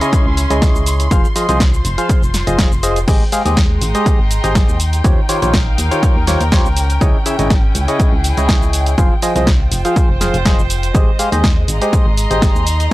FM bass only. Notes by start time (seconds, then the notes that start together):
0.26 C#2
0.50 C#2
0.75 C#2
1.11 F1
1.49 C2
1.85 F1
2.23 F1
2.47 F1
2.72 F1
3.08 G#1
3.45 D#2
3.82 G#1
4.19 G#1
4.44 G#1
4.69 D#2
5.04 D#2
5.42 A#1
5.78 D#2
6.16 D#2
6.41 D#2
6.65 C#2
7.01 C#2
7.39 G#1
7.75 C#2
8.13 C#2
8.37 C#2
8.62 C#2
8.98 F1
9.36 C2
9.72 F1
10.09 F1
10.34 F1
10.58 F1
10.95 G#1
11.32 D#2
11.68 G#1
12.06 G#1
12.31 G#1
12.55 D#2